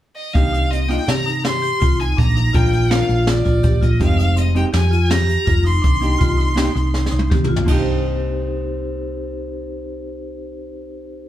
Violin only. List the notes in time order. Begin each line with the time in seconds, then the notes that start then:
0.16 D#5
0.33 F5
0.70 D#5
0.89 G5
1.08 A#5
1.45 C6
2.00 G#5
2.18 A#5
2.55 G5
2.91 F5
3.29 D5
3.83 D#5
4.01 F5
4.38 D#5
4.56 G5
4.75 G#5
5.10 A#5
5.66 C6